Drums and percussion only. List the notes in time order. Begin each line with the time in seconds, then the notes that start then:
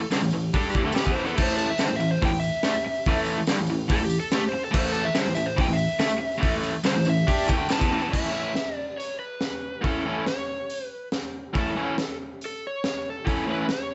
0.11 snare, open hi-hat, tambourine
0.31 tambourine
0.41 tambourine
0.53 kick, open hi-hat, tambourine
0.62 tambourine
0.71 kick, tambourine
0.92 snare, tambourine
0.97 open hi-hat
1.04 kick, tambourine
1.15 tambourine
1.26 tambourine
1.38 kick, crash, tambourine
1.58 tambourine
1.78 snare, open hi-hat, tambourine
1.89 tambourine
2.00 tambourine
2.22 kick, open hi-hat
2.42 tambourine
2.54 tambourine
2.63 snare, open hi-hat, tambourine
2.74 tambourine
2.94 tambourine
3.05 kick, open hi-hat, tambourine
3.25 tambourine
3.47 snare, open hi-hat, tambourine
3.67 tambourine
3.89 kick, open hi-hat
4.10 tambourine
4.32 snare, open hi-hat, tambourine
4.65 tambourine
4.73 kick, crash, tambourine
4.94 tambourine
5.15 snare, open hi-hat, tambourine
5.28 tambourine
5.35 tambourine
5.58 kick, open hi-hat
5.78 tambourine
5.89 tambourine
5.99 snare, open hi-hat, tambourine
6.09 tambourine
6.32 tambourine
6.42 kick, open hi-hat, tambourine
6.63 tambourine
6.84 snare, open hi-hat, tambourine
7.05 tambourine
7.16 tambourine
7.28 kick, open hi-hat, tambourine
7.38 tambourine
7.48 kick, tambourine
7.59 tambourine
7.69 snare, open hi-hat, tambourine
7.81 kick, tambourine
8.02 tambourine
8.13 kick, crash
8.55 snare, open hi-hat
9.00 open hi-hat
9.41 snare, open hi-hat
9.84 kick, open hi-hat
10.26 snare, open hi-hat
10.70 open hi-hat
11.12 snare, open hi-hat
11.55 kick, open hi-hat
11.98 snare, open hi-hat
12.41 open hi-hat
12.84 snare, open hi-hat
13.27 kick, open hi-hat
13.69 snare, open hi-hat